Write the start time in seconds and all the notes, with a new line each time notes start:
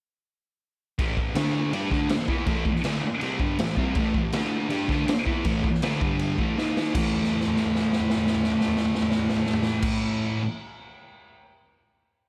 0.98 A2 E3 A3, kick, crash
1.17 A2 E3, kick
1.35 D3 A3 D4, snare, crash
1.73 G3 D4 G4, crash
1.90 D3 A3 D4, kick, snare
2.09 muted distorted electric guitar stroke, snare, crash
2.28 E3 B3 E4, kick
2.46 A2 E3 A3, kick, crash
2.65 muted distorted electric guitar stroke, kick
2.76 snare
2.84 D3 A3 D4, snare, crash
3.03 muted distorted electric guitar stroke
3.21 C3 G3 C4, crash
3.40 G2 D3 G3, kick
3.59 A2 E3, snare, crash
3.77 C3 G3 C4, kick
3.95 A2 E3 A3, kick, crash
4.14 A2 E3, kick
4.32 D3 A3 D4, snare, crash
4.69 G3 D4 G4, crash
4.87 D3 A3 D4, kick, snare
5.07 muted distorted electric guitar stroke, snare, crash
5.25 E3 B3 E4, kick
5.45 A2 E3 A3, kick, crash
5.64 muted distorted electric guitar stroke, kick
5.75 snare
5.82 D3 A3 D4, snare, crash
6.01 G2 D3 G3, kick
6.19 crash
6.38 A2 E3 A3, kick
6.57 D#3 A#3 D#4, snare
6.77 snare
6.93 A2 E3, kick, crash
6.97 A3
7.14 floor tom
7.23 snare
7.30 floor tom
7.41 snare
7.48 floor tom
7.57 snare
7.65 floor tom
7.76 snare
7.83 floor tom
7.93 snare
8.00 floor tom
8.10 snare
8.18 floor tom
8.27 snare
8.34 floor tom
8.44 snare
8.52 floor tom
8.61 snare
8.68 floor tom
8.77 snare
8.85 floor tom
8.95 snare
9.02 floor tom
9.12 snare
9.19 floor tom
9.29 snare
9.36 floor tom
9.46 snare
9.53 floor tom
9.63 snare
9.82 kick, crash